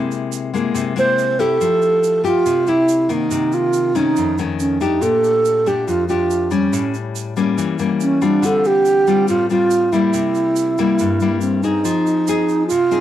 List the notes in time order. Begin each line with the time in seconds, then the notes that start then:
Already playing: C3 G#3 A#3 C4 E4
0.11 shaker
0.32 shaker
0.53 G#3 A#3 E4, shaker
0.74 C3, shaker
0.96 G#3 A#3 E4 C5, shaker
1.19 shaker
1.39 A3 E4 G4 A4, shaker
1.61 F3, shaker
1.82 shaker
2.03 shaker
2.24 A3 F4 G4, shaker
2.46 C3, shaker
2.67 A3 E4 G4, shaker
2.88 shaker
3.09 D#3 A#3 D#4, shaker
3.31 C3, shaker
3.52 F4, shaker
3.73 shaker
3.95 D#3 A3 C#4 D#4, shaker
4.16 F2, shaker
4.38 D#3 A3 C#4, shaker
4.59 C#4, shaker
4.81 A3 D4 D#4 G4, shaker
5.01 A#2 A4, shaker
5.24 shaker
5.45 shaker
5.66 A3 D4 G4, shaker
5.88 F2 F4, shaker
6.08 A3 D4 F4 G4, shaker
6.30 shaker
6.51 G3 C#4, shaker
6.73 A2, shaker
6.94 shaker
7.15 shaker
7.37 G3 A#3 C#4, shaker
7.58 E3, shaker
7.79 G3 A#3 C#4, shaker
8.00 C#4, shaker
8.21 G3 C4 D4 F4, shaker
8.42 D3 A4, shaker
8.64 G4, shaker
8.85 shaker
9.07 G3 C4 F4, shaker
9.28 A2 F4, shaker
9.50 G3 C4 F4, shaker
9.71 shaker
9.92 G3 A#3 E4, shaker
10.13 C3, shaker
10.35 shaker
10.56 shaker
10.78 G3 A#3 E4, shaker
10.99 G2, shaker
11.20 G3 A#3 E4, shaker
11.41 C4, shaker
11.63 C4 D#4 G#4, shaker
11.85 F3, shaker
12.07 shaker
12.27 C4 D#4 G#4, shaker
12.49 shaker
12.67 F4, shaker
12.71 C3
12.91 C4 D#4 G#4, shaker